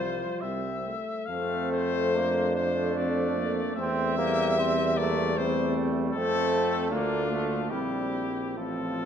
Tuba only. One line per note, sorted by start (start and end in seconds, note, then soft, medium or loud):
0.00 0.25 C2 medium
0.42 0.93 C2 medium
1.29 3.73 F2 loud
3.78 6.11 E2 loud
6.15 6.94 F2 loud
6.93 7.71 D2 medium
7.72 8.58 A#1 medium
8.56 9.05 A1 medium